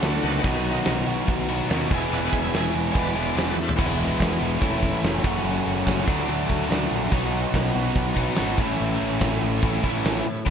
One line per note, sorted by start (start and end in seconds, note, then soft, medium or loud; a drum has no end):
0.00 0.18 D2 loud
0.00 0.41 D3 loud
0.00 0.42 D3 medium
0.00 0.42 F#3 medium
0.00 0.42 A3 loud
0.00 0.42 A3 medium
0.00 0.43 A3 medium
0.00 0.42 D4 loud
0.00 0.42 D4 medium
0.00 0.43 D4 loud
0.00 0.43 F#4 loud
0.00 snare loud
0.00 ride loud
0.05 0.44 F#4 loud
0.23 0.39 C#2 medium
0.23 1.03 D#3 medium
0.23 0.65 B3 loud
0.23 ride medium
0.44 0.77 B1 loud
0.44 1.05 B2 medium
0.44 1.47 D#3 loud
0.44 1.06 F#3 medium
0.44 1.09 B3 medium
0.44 1.07 D#4 loud
0.44 kick loud
0.44 ride medium
0.48 1.06 F#4 loud
0.65 0.93 F#3 medium
0.65 0.93 B3 medium
0.65 0.93 D#4 medium
0.65 ride medium
0.85 1.02 B1 medium
0.85 snare loud
0.85 ride loud
1.06 1.23 B1 medium
1.06 1.70 B3 medium
1.06 1.69 D#4 medium
1.06 1.68 F#4 medium
1.06 ride medium
1.11 1.67 B2 medium
1.11 1.68 F#3 medium
1.27 1.60 B1 loud
1.27 kick loud
1.27 ride loud
1.49 1.69 B2 medium
1.49 1.70 D#3 medium
1.49 1.69 F#3 medium
1.49 1.72 B3 medium
1.49 1.68 F#4 medium
1.49 ride medium
1.68 1.86 D#2 medium
1.68 1.88 B2 medium
1.68 1.89 D#3 medium
1.68 1.89 F#3 medium
1.68 1.93 B3 medium
1.68 1.90 D#4 medium
1.68 snare loud
1.68 ride loud
1.72 1.90 F#4 medium
1.87 2.10 G#4 medium
1.87 1.89 D#5 medium
1.91 2.07 E1 medium
1.91 2.52 E2 medium
1.91 2.52 B2 medium
1.91 2.53 E3 loud
1.91 2.53 G#3 medium
1.91 2.53 B3 loud
1.91 2.95 E4 medium
1.91 2.11 E5 loud
1.91 kick loud
1.91 crash loud
1.95 2.54 G#4 loud
2.11 2.27 E1 medium
2.11 2.39 G#3 medium
2.11 2.40 B3 soft
2.11 2.40 E4 medium
2.11 2.31 D5 medium
2.11 2.33 F#5 medium
2.33 2.49 E1 medium
2.33 2.71 G#4 medium
2.33 2.74 E5 loud
2.33 kick medium
2.33 ride medium
2.54 2.70 E1 medium
2.54 3.15 E2 medium
2.54 3.15 B2 medium
2.54 3.15 E3 medium
2.54 3.16 G#3 medium
2.54 3.15 B3 medium
2.54 snare loud
2.54 ride loud
2.58 3.14 G#4 medium
2.73 2.90 E1 medium
2.73 ride medium
2.86 snare soft
2.92 3.11 E1 medium
2.92 3.13 E3 medium
2.92 3.14 G#3 medium
2.92 3.13 B3 medium
2.92 2.94 C#5 medium
2.92 3.15 D5 loud
2.92 kick loud
2.92 ride loud
2.96 3.12 E4 medium
2.96 3.14 B4 medium
3.13 3.31 E1 medium
3.13 3.57 G#3 medium
3.13 3.56 B3 medium
3.13 3.55 E4 medium
3.13 3.56 G#4 loud
3.13 3.34 B4 medium
3.13 3.36 D5 medium
3.13 ride medium
3.18 3.58 E2 medium
3.18 3.57 B2 medium
3.18 3.57 E3 medium
3.35 3.52 E1 medium
3.35 3.55 B4 medium
3.35 3.57 D5 medium
3.35 snare loud
3.35 ride loud
3.50 3.69 A3 medium
3.50 3.71 B3 medium
3.56 3.73 E2 medium
3.56 3.72 C4 medium
3.56 3.74 D4 medium
3.56 3.77 E5 loud
3.60 3.75 E4 medium
3.60 snare medium
3.65 3.77 F4 medium
3.65 3.78 G4 medium
3.69 3.79 A4 medium
3.69 3.80 B4 medium
3.69 floor tom loud
3.76 4.11 E1 medium
3.76 4.39 E2 loud
3.76 4.39 B2 medium
3.76 4.40 E3 medium
3.76 4.40 G#3 loud
3.76 4.39 B3 loud
3.76 3.82 C5 medium
3.76 3.83 D5 medium
3.76 kick loud
3.76 crash loud
3.81 4.39 E4 loud
3.81 4.62 G#4 medium
3.81 4.62 B4 medium
3.81 4.60 E5 medium
3.81 4.62 G#5 medium
4.00 snare soft
4.00 closed hi-hat medium
4.20 4.36 E1 medium
4.20 kick medium
4.20 snare loud
4.20 closed hi-hat loud
4.40 4.57 E1 medium
4.40 4.62 E2 medium
4.40 4.61 B2 medium
4.40 4.59 E3 medium
4.40 4.61 G#3 medium
4.40 4.60 B3 medium
4.40 4.60 E4 medium
4.40 closed hi-hat medium
4.60 4.94 E1 loud
4.60 5.22 E3 loud
4.60 5.23 A3 loud
4.60 5.23 C#4 loud
4.60 5.24 E4 medium
4.60 5.22 A4 medium
4.60 5.23 C#5 medium
4.60 5.23 E5 medium
4.60 kick loud
4.60 closed hi-hat loud
4.65 5.25 E4 loud
4.83 kick medium
4.83 closed hi-hat medium
4.94 closed hi-hat soft
5.03 5.19 F1 medium
5.03 snare loud
5.03 closed hi-hat loud
5.22 5.40 F#1 medium
5.22 5.82 F#2 medium
5.22 5.84 C#3 medium
5.22 5.86 F#3 loud
5.22 5.85 A3 loud
5.22 5.86 C#4 loud
5.22 6.07 F#4 medium
5.22 6.06 A4 medium
5.22 6.07 C#5 medium
5.22 6.07 F#5 medium
5.22 kick loud
5.22 closed hi-hat medium
5.26 5.87 F#4 loud
5.36 snare soft
5.43 5.60 F#1 loud
5.43 closed hi-hat loud
5.66 5.82 F#1 medium
5.66 closed hi-hat medium
5.76 closed hi-hat soft
5.83 6.03 F#1 medium
5.83 6.05 F#2 medium
5.83 6.06 C#3 medium
5.83 6.06 F#3 medium
5.83 6.06 A3 medium
5.83 6.07 C#4 medium
5.83 6.10 F#4 medium
5.83 kick medium
5.83 closed hi-hat loud
5.88 snare loud
6.05 6.24 D2 medium
6.05 6.68 D3 medium
6.05 7.09 F#3 loud
6.05 6.69 A3 medium
6.05 7.12 D5 medium
6.05 7.10 F#5 medium
6.05 kick loud
6.05 crash loud
6.09 6.70 D4 loud
6.09 7.11 F#4 medium
6.09 6.70 F#4 medium
6.09 7.12 A4 medium
6.09 snare soft
6.28 6.45 D2 loud
6.50 6.66 D2 medium
6.50 kick medium
6.50 closed hi-hat medium
6.69 6.86 D2 loud
6.69 7.10 D3 medium
6.69 7.10 A3 loud
6.69 7.11 D4 medium
6.69 7.12 F#4 loud
6.69 snare loud
6.69 closed hi-hat loud
6.82 closed hi-hat soft
6.91 7.07 A#1 medium
6.91 closed hi-hat medium
7.02 closed hi-hat medium
7.11 7.44 B1 loud
7.11 7.73 B2 loud
7.11 7.74 F#3 medium
7.11 7.74 B3 loud
7.11 7.75 D#4 loud
7.11 8.56 F#4 medium
7.11 8.57 B4 medium
7.11 8.57 D#5 medium
7.11 8.56 F#5 medium
7.11 kick loud
7.11 closed hi-hat loud
7.15 7.74 F#4 loud
7.33 closed hi-hat medium
7.54 7.70 B1 loud
7.54 kick medium
7.54 snare loud
7.54 closed hi-hat loud
7.75 7.91 B1 medium
7.75 8.36 B2 medium
7.75 8.36 F#3 medium
7.75 8.37 B3 medium
7.75 8.37 D#4 medium
7.75 8.36 F#4 medium
7.75 snare soft
7.75 closed hi-hat medium
7.95 8.28 B1 loud
7.95 kick loud
7.95 closed hi-hat loud
8.14 8.35 B2 medium
8.14 8.35 F#3 medium
8.14 8.35 B3 medium
8.14 8.35 D#4 medium
8.14 kick medium
8.14 closed hi-hat medium
8.26 closed hi-hat medium
8.35 8.54 G#1 medium
8.35 8.57 B2 medium
8.35 8.57 F#3 medium
8.35 8.57 B3 medium
8.35 snare loud
8.35 closed hi-hat medium
8.40 8.58 D#4 medium
8.40 8.59 F#4 medium
8.57 8.74 A1 loud
8.57 9.19 A2 medium
8.57 9.21 E3 loud
8.57 9.20 A3 medium
8.57 9.21 C#4 medium
8.57 10.44 E4 medium
8.57 10.44 A4 medium
8.57 10.43 C#5 medium
8.57 10.44 E5 medium
8.57 kick loud
8.57 crash loud
8.62 9.24 E4 loud
8.69 snare soft
8.81 8.96 A1 loud
9.00 9.17 A1 medium
9.00 closed hi-hat medium
9.11 closed hi-hat medium
9.21 9.37 A1 loud
9.21 9.82 A2 medium
9.21 9.82 E3 medium
9.21 9.83 A3 loud
9.21 9.83 C#4 medium
9.21 kick medium
9.21 snare loud
9.21 closed hi-hat loud
9.25 9.82 E4 medium
9.41 9.59 A1 medium
9.41 closed hi-hat medium
9.52 closed hi-hat medium
9.62 9.79 A1 medium
9.62 9.82 A2 medium
9.62 9.82 E3 medium
9.62 9.82 A3 medium
9.62 9.83 C#4 medium
9.62 9.83 E4 loud
9.62 kick loud
9.62 closed hi-hat loud
9.83 10.00 A1 medium
9.83 10.25 E3 medium
9.83 10.25 A3 medium
9.83 10.24 C#4 medium
9.83 10.24 E4 medium
9.83 kick medium
9.83 closed hi-hat medium
9.88 10.26 A2 medium
10.05 10.21 A1 loud
10.05 snare loud
10.05 closed hi-hat loud
10.14 closed hi-hat soft
10.26 10.42 A2 medium
10.26 closed hi-hat medium
10.37 closed hi-hat medium
10.45 10.50 E1 loud
10.45 10.50 E2 medium
10.45 10.50 B2 medium
10.45 10.50 E3 loud
10.45 10.50 G#3 medium
10.45 10.50 E4 medium
10.45 10.50 B4 medium
10.45 10.50 E5 medium
10.45 kick loud
10.45 crash loud